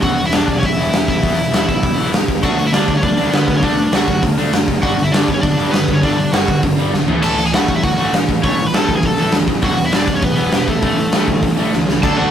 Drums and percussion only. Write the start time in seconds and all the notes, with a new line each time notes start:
0.02 kick, open hi-hat
0.18 open hi-hat
0.32 snare, open hi-hat
0.48 kick, open hi-hat
0.63 kick, open hi-hat
0.78 open hi-hat
0.93 snare, open hi-hat
1.08 kick, open hi-hat
1.23 kick, open hi-hat
1.39 open hi-hat
1.54 snare, open hi-hat
1.69 kick, open hi-hat
1.83 kick, open hi-hat
1.98 open hi-hat
2.14 snare, open hi-hat
2.28 kick, open hi-hat
2.43 kick, crash
2.58 open hi-hat
2.73 snare, open hi-hat
2.88 kick, open hi-hat
3.03 kick, open hi-hat
3.18 open hi-hat
3.33 snare, open hi-hat
3.48 kick, open hi-hat
3.62 kick, open hi-hat
3.77 open hi-hat
3.92 snare, open hi-hat
4.08 kick, open hi-hat
4.23 kick, open hi-hat
4.38 open hi-hat
4.53 snare, open hi-hat
4.68 kick, open hi-hat
4.83 kick, open hi-hat
4.99 open hi-hat
5.14 snare, open hi-hat
5.28 kick, open hi-hat
5.43 kick, open hi-hat
5.59 open hi-hat
5.73 snare, open hi-hat
5.88 kick, open hi-hat
6.03 kick, open hi-hat
6.19 open hi-hat
6.33 snare, open hi-hat
6.48 kick, open hi-hat
6.63 kick, open hi-hat
6.78 open hi-hat
6.94 snare
7.08 floor tom
7.22 splash, crash
7.38 open hi-hat
7.53 snare, open hi-hat
7.68 kick, open hi-hat
7.84 kick, open hi-hat
7.98 open hi-hat
8.13 snare, open hi-hat
8.29 kick, open hi-hat
8.44 kick, open hi-hat
8.59 open hi-hat
8.74 snare, open hi-hat
8.89 kick, open hi-hat
9.03 kick, open hi-hat
9.18 open hi-hat
9.32 snare, open hi-hat
9.47 kick, open hi-hat
9.62 kick, open hi-hat
9.78 open hi-hat
9.92 snare, open hi-hat
10.07 kick, open hi-hat
10.22 kick, open hi-hat
10.37 open hi-hat
10.52 snare, open hi-hat
10.68 kick, open hi-hat
10.82 kick, open hi-hat
10.98 open hi-hat
11.12 snare, open hi-hat
11.28 kick, open hi-hat
11.43 kick, open hi-hat
11.57 open hi-hat
11.73 snare
11.89 snare
12.03 kick, crash